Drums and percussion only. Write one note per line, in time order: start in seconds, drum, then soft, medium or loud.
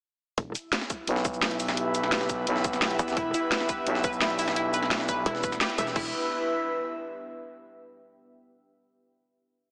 0.38 kick loud
0.38 closed hi-hat medium
0.55 closed hi-hat medium
0.55 shaker medium
0.73 snare loud
0.73 closed hi-hat loud
0.73 closed hi-hat medium
0.81 snare soft
0.90 kick medium
0.90 closed hi-hat medium
0.90 shaker medium
1.07 closed hi-hat loud
1.07 closed hi-hat medium
1.16 snare soft
1.25 kick loud
1.25 closed hi-hat medium
1.25 shaker medium
1.34 shaker soft
1.42 snare loud
1.42 closed hi-hat loud
1.51 closed hi-hat soft
1.60 closed hi-hat medium
1.60 open hi-hat medium
1.60 shaker medium
1.68 snare medium
1.68 snare soft
1.68 shaker soft
1.77 closed hi-hat medium
1.77 closed hi-hat loud
1.95 closed hi-hat medium
1.95 shaker medium
2.03 snare soft
2.12 snare loud
2.12 closed hi-hat loud
2.12 closed hi-hat medium
2.21 snare medium
2.21 snare soft
2.30 kick medium
2.30 closed hi-hat medium
2.30 shaker medium
2.47 closed hi-hat medium
2.56 snare soft
2.64 kick loud
2.64 closed hi-hat medium
2.64 shaker medium
2.73 snare soft
2.73 shaker soft
2.82 snare loud
2.82 closed hi-hat medium
2.82 closed hi-hat loud
2.91 closed hi-hat soft
2.99 closed hi-hat medium
2.99 shaker medium
3.08 snare medium
3.08 shaker soft
3.17 kick loud
3.17 closed hi-hat medium
3.34 closed hi-hat medium
3.34 shaker medium
3.52 snare loud
3.52 closed hi-hat medium
3.52 closed hi-hat loud
3.60 snare soft
3.69 kick medium
3.69 closed hi-hat medium
3.69 shaker medium
3.87 closed hi-hat medium
3.87 closed hi-hat loud
3.95 snare soft
4.04 kick loud
4.04 closed hi-hat medium
4.04 shaker medium
4.13 shaker soft
4.21 snare loud
4.21 closed hi-hat medium
4.30 closed hi-hat soft
4.39 closed hi-hat medium
4.39 open hi-hat medium
4.39 shaker medium
4.48 snare medium
4.48 snare soft
4.48 shaker soft
4.56 closed hi-hat medium
4.56 closed hi-hat loud
4.74 closed hi-hat medium
4.74 shaker medium
4.83 snare soft
4.91 snare loud
4.91 closed hi-hat medium
5.00 snare medium
5.00 snare soft
5.09 kick medium
5.09 closed hi-hat medium
5.09 shaker medium
5.26 closed hi-hat medium
5.35 snare soft
5.43 kick loud
5.43 closed hi-hat medium
5.43 shaker medium
5.52 snare soft
5.52 shaker soft
5.61 snare loud
5.61 closed hi-hat medium
5.70 closed hi-hat soft
5.78 closed hi-hat medium
5.78 shaker medium
5.87 snare soft
5.87 shaker soft
5.96 kick loud
5.96 crash medium